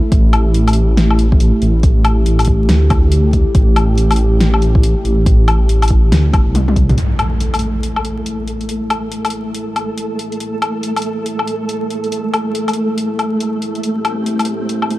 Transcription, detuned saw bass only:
0.12 1.52 A1 loud
1.62 2.25 A1 loud
2.26 2.68 A1 loud
2.69 3.45 D2 loud
3.55 4.95 A1 loud
5.05 5.68 A1 loud
5.69 6.11 A1 loud
6.12 6.35 D2 loud
6.33 6.48 G1 medium
6.46 6.96 C2 medium

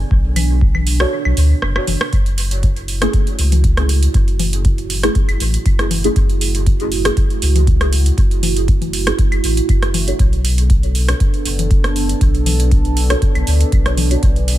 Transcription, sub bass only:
0.11 1.05 B1 loud
1.25 1.33 B1 loud
1.37 1.53 D2 loud
1.62 1.78 F#1 medium
1.87 1.96 F#1 medium
2.13 3.06 F#1 loud
3.39 4.07 C#2 loud
4.14 5.08 F#1 loud
5.29 5.36 F#1 loud
5.40 5.57 A1 loud
5.66 6.09 F#1 medium
6.16 7.10 F#1 loud
7.42 8.10 C#2 loud
8.18 9.11 F#1 medium
9.32 9.39 F#1 loud
9.44 9.60 A1 loud
9.69 10.12 F#1 medium
10.19 11.13 B1 loud
11.45 12.14 F#1 loud
12.21 13.15 B1 loud
13.35 13.43 B1 loud
13.47 13.63 D2 loud
13.72 14.16 B1 medium
14.23 14.58 B1 loud

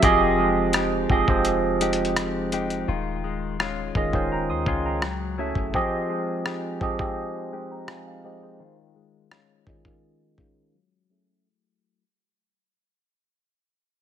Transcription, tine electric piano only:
0.03 0.91 F3 loud
0.03 0.91 C4 medium
0.03 0.91 G4 loud
0.03 0.91 G#4 medium
0.03 0.92 D#5 loud
1.10 1.24 F3 medium
1.10 1.25 C4 medium
1.10 1.25 G4 medium
1.10 1.25 G#4 medium
1.10 1.25 D#5 medium
1.28 2.45 F3 medium
1.28 2.46 C4 medium
1.28 2.46 G4 medium
1.28 2.46 G#4 medium
1.28 2.46 C5 medium
3.95 4.10 D#3 medium
3.95 4.10 C#4 medium
3.95 4.10 F4 medium
3.95 4.11 G#4 medium
3.95 4.11 D#5 medium
4.13 4.57 D#3 medium
4.13 4.57 C#4 medium
4.13 4.58 F4 medium
4.13 4.58 G#4 medium
4.13 4.58 C5 medium
4.32 4.49 G5 medium
4.32 4.48 A#5 medium
4.50 4.67 C6 medium
4.50 4.66 D#6 medium
4.68 4.85 G#5 medium
4.68 4.84 C6 medium
4.86 5.19 G5 medium
4.86 5.19 A#5 medium
5.38 5.67 F#3 medium
5.38 5.68 C#4 medium
5.38 5.68 G#4 medium
5.38 5.68 A4 medium
5.38 5.68 E5 medium
5.74 6.62 F3 loud
5.74 6.62 C4 loud
5.74 6.63 G4 loud
5.74 6.63 G#4 loud
5.74 6.63 D#5 loud
6.81 6.96 F3 medium
6.81 6.96 C4 medium
6.81 6.96 G4 medium
6.81 6.96 G#4 medium
6.81 6.97 D#5 medium
6.99 8.16 F3 medium
6.99 8.17 C4 medium
6.99 7.53 G4 medium
6.99 7.53 G#4 medium
6.99 7.53 D#5 medium
7.71 7.88 G5 soft
7.71 7.88 A#5 medium
7.89 8.06 F5 medium
7.89 8.06 G#5 medium
8.07 8.23 F5 medium
8.25 8.42 C5 medium
8.25 8.41 D#5 medium
8.43 8.76 G#4 soft
8.43 8.76 C5 medium
9.67 9.82 D#3 medium
9.67 9.82 C#4 medium
9.67 9.82 F4 medium
9.67 9.82 G#4 medium
9.67 9.82 D#5 medium
9.85 10.29 D#3 medium
9.85 10.29 C#4 medium
9.85 10.29 F4 medium
9.85 10.29 G#4 medium
9.85 10.30 D#5 medium
10.38 10.74 D#3 medium
10.38 10.74 C#4 medium
10.38 10.74 F4 medium
10.38 10.74 G#4 medium
10.38 10.75 A#4 medium
11.10 11.39 F#3 medium
11.10 11.39 C#4 medium
11.10 11.39 G#4 medium
11.10 11.40 A4 medium
11.10 11.40 E5 medium

